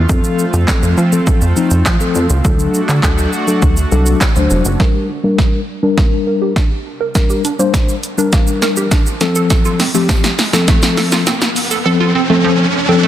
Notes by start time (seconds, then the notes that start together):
Already playing: F4
0.09 F2 F3 A3 C4 A4, kick, shaker
0.24 shaker
0.39 shaker
0.53 F2, shaker
0.68 F3 C4 A4, kick, snare, clap, shaker
0.83 F2, shaker
0.97 F3, shaker
1.12 F3 C4 A4, shaker
1.27 kick, shaker
1.41 F2, shaker
1.56 F3 C4 D#4, shaker
1.71 F2, shaker
1.86 F3, kick, snare, clap, shaker
2.00 F3 C4 A4, shaker
2.15 F2, shaker
2.30 C#2, shaker
2.44 D2 F#3 A3 D4 F#4 A4, kick, shaker
2.59 shaker
2.74 shaker
2.89 D3, clap, shaker
3.03 D2 F#3 D4 A4, kick, snare, clap, shaker
3.18 shaker
3.33 shaker
3.47 F#3 D4 A4, shaker
3.62 D2, kick, shaker
3.77 shaker
3.91 C2 F#3 D4 A4, shaker
4.06 shaker
4.21 kick, snare, clap, shaker
4.36 D2 F#3 D4 C5, shaker
4.50 F1, shaker
4.65 F#1, shaker
4.80 G3 D4 A#4, kick, snare, riser
4.95 G4
5.09 D4
5.24 G3 A#3 D4 A#4
5.38 G3, kick, snare
5.83 G3 D4 A#4
5.97 A#3, kick, snare
6.27 A#4
6.42 G4
6.56 D4, kick, snare
7.00 A#4
7.15 G3 D4 A#4, kick, snare, closed hi-hat, shaker
7.30 G4, shaker
7.45 D4, closed hi-hat, shaker
7.59 G3 A#3 D4 C5, shaker
7.74 G3, kick, snare, closed hi-hat, shaker
7.89 shaker
8.03 closed hi-hat, shaker
8.18 G3 D4 A#4, shaker
8.33 A#3, kick, snare, closed hi-hat, shaker
8.47 shaker
8.62 A#4, snare, closed hi-hat, shaker
8.77 G4, shaker
8.91 D4, kick, snare, closed hi-hat, shaker
9.06 shaker
9.21 F3 C4 A4, snare, closed hi-hat, shaker
9.36 A4, shaker
9.50 A4, kick, snare, closed hi-hat, tambourine, shaker
9.65 F4, shaker
9.80 C4, snare, open hi-hat, tambourine, shaker
9.94 F3 A3 C4 G4, tambourine, shaker
10.09 F3, kick, snare, closed hi-hat, tambourine, shaker
10.24 snare, shaker
10.39 snare, open hi-hat, tambourine, shaker
10.53 F3 C4 A4, snare, tambourine, shaker
10.68 A3, kick, snare, closed hi-hat, shaker
10.82 snare, tambourine, shaker
10.97 A4, snare, open hi-hat, tambourine, shaker
11.12 F4, snare, tambourine, shaker
11.27 C4, snare, closed hi-hat, tambourine, shaker
11.42 snare, shaker
11.56 open hi-hat, tambourine, shaker
11.71 A4, tambourine, shaker
11.85 F3 C4 A4
12.00 F4
12.15 C4
12.30 F3 A3 C4 A4
12.44 F3
12.88 F3 C4 A4
13.03 A3